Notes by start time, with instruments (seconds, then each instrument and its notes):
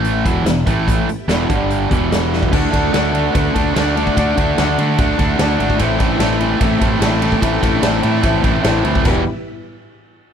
Already playing: fingered electric bass A1, distorted electric guitar A2 E3 A3, string machine E4 A4 E5 A5
0.04 closed hi-hat
0.25 fingered electric bass E1, distorted electric guitar E2 B2 E3, string machine G4 B4 E5 G5, kick, closed hi-hat
0.45 fingered electric bass E1, distorted electric guitar E2 B2, snare, closed hi-hat
0.66 fingered electric bass A1, distorted electric guitar A2 E3 A3, string machine E4 A4 E5 A5, kick, closed hi-hat
0.88 kick, closed hi-hat
1.07 string machine G4 B4 E5 G5, muted fingered electric bass stroke, muted overdriven electric guitar stroke, muted distorted electric guitar stroke, closed hi-hat
1.28 fingered electric bass E1, distorted electric guitar E2 B2 E3, snare, closed hi-hat
1.49 fingered electric bass G1, distorted electric guitar G2 D3 G3, string machine D4 G4 D5 G5, kick, closed hi-hat
1.70 closed hi-hat
1.89 fingered electric bass E1, distorted electric guitar E2 B2 E3, string machine E4 G4 B4 E5, kick, closed hi-hat
2.12 snare, closed hi-hat
2.33 snare
2.43 kick
2.52 fingered electric bass D2, distorted electric guitar D3 A3 D4 F#4, grand piano A4 D5 F#5, kick, crash
2.73 fingered electric bass D2, distorted electric guitar D3 A3 D4 F#4, string machine A4, kick, ride
2.93 fingered electric bass D2, distorted electric guitar D3 A3 D4 F#4, grand piano A4 D5 F#5, snare, ride
3.14 distorted electric guitar D3 A3 D4 F#4, string machine B4, ride
3.35 fingered electric bass D2, distorted electric guitar D3 A3 D4 F#4, grand piano A4 D5 F#5, string machine D5, kick, ride
3.55 fingered electric bass D2, distorted electric guitar D3 A3 D4 F#4, string machine D5, kick, ride
3.75 fingered electric bass D2, distorted electric guitar D3 A3 D4 F#4, grand piano A4 D5 F#5, snare, ride
3.96 distorted electric guitar D3 A3 D4 F#4, ride
4.07 kick
4.16 fingered electric bass D2, distorted electric guitar D3 A3 D4 F#4, grand piano A4 D5 F#5, kick, ride
4.37 fingered electric bass D2, distorted electric guitar D3 A3 D4 F#4, kick, ride
4.58 fingered electric bass D2, distorted electric guitar D3 A3 D4 F#4, grand piano A4 D5 F#5, snare, ride
4.78 fingered electric bass D3, distorted electric guitar D3 A3 D4 F#4, ride
4.98 fingered electric bass D2, distorted electric guitar D3 A3 D4 F#4, grand piano A4 D5 F#5, string machine A5, kick, ride
5.19 fingered electric bass D2, distorted electric guitar D3 A3 D4 F#4, string machine E5, kick, ride
5.39 fingered electric bass D2, distorted electric guitar D3 A3 D4 F#4, grand piano A4 D5 F#5, string machine D5, snare, ride
5.59 fingered electric bass G#1, distorted electric guitar D3 A3 D4 F#4, ride
5.63 string machine E5
5.70 kick
5.79 fingered electric bass A1, distorted electric guitar A2 E3 A3 C4 E4, grand piano A4 C5 E5, string machine D5, kick, ride
5.99 fingered electric bass A1, distorted electric guitar A2 E3 A3 C4 E4, kick, ride
6.04 string machine E5
6.19 fingered electric bass A1, distorted electric guitar A2 E3 A3 C4 E4, grand piano A4 C5 E5, snare, ride
6.40 distorted electric guitar A2 E3 A3 C4 E4, ride
6.60 fingered electric bass A1, distorted electric guitar A2 E3 A3 C4 E4, grand piano A4 C5 E5, string machine E5, kick, ride
6.81 fingered electric bass A1, distorted electric guitar A2 E3 A3 C4 E4, kick, ride
6.85 string machine G5
7.00 fingered electric bass A1, distorted electric guitar A2 E3 A3 C4, grand piano A4 C5 E5, string machine A5, snare, ride
7.05 distorted electric guitar E4
7.22 distorted electric guitar A2 E3 A3 C4 E4, ride
7.32 kick
7.41 fingered electric bass A1, distorted electric guitar A2 E3 A3 C4 E4, grand piano A4 C5 E5, string machine G5, kick, ride
7.62 fingered electric bass A1, distorted electric guitar A2 E3 A3 C4 E4, string machine D5, kick, ride
7.82 fingered electric bass A1, distorted electric guitar A2 E3 A3 C4 E4, grand piano A4 C5 E5, string machine E5, snare, ride
8.02 distorted electric guitar A2 E3 A3 C4 E4, fingered electric bass A2, string machine E5, ride
8.23 fingered electric bass A1, distorted electric guitar A2 E3 A3 C4 E4, grand piano A4 C5 E5, kick, ride
8.43 fingered electric bass A1, distorted electric guitar A2 E3 A3 C4 E4, kick, ride
8.64 fingered electric bass A1, distorted electric guitar A2 E3 A3 C4 E4, grand piano A4 C5 E5, snare, ride
8.85 fingered electric bass D2, distorted electric guitar A2 E3 A3 C4 E4, ride
8.95 kick
9.04 fingered electric bass E1, distorted electric guitar E2 B2 E3 G3 B3 G4, string machine E4 G4 B4 E5, grand piano G4 B4 E5, kick, crash